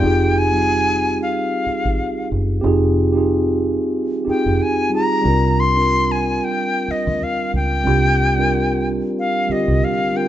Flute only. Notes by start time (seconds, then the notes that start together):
Already playing: G5
0.38 G#5
1.22 F5
4.29 G5
4.62 G#5
4.95 A#5
5.60 C6
6.11 G#5
6.44 G5
6.91 D#5
7.23 F5
7.56 G5
9.19 F5
9.52 D#5
9.84 F5
10.17 G5